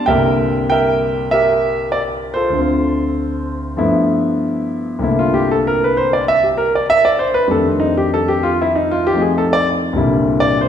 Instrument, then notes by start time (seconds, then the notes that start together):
grand piano
0.06 C2 G2 D3 G3 A#3 A#4 E5 G5
0.70 A#4 E5 G5
1.31 G4 A#4 E5
1.92 D5
2.34 F4 A4 C5
2.50 D2 D3
2.57 C4 F4
3.77 G2 F3 A3 B3 E4
4.99 C2 G2 D3 A3
5.03 A#3 E4
5.19 F4
5.34 G4
5.51 A4
5.67 A#4
5.84 B4
5.97 C5
6.13 D5
6.28 E5
6.43 G4
6.58 A#4
6.75 D5
6.90 E5
7.05 D5
7.19 C5
7.34 B4
7.47 F2 D#3 G3 A3 D4 A4
7.67 C4
7.80 D#4
7.98 G4
8.14 A4
8.28 G4
8.43 F4
8.62 E4
8.75 D#4
8.91 F4
9.07 G4
9.13 F3 A3 C4 D#4
9.22 G#4
9.38 A4
9.53 D5
9.93 C2 G2 A#2 D3 G3
9.98 E4
10.40 D5
10.61 C5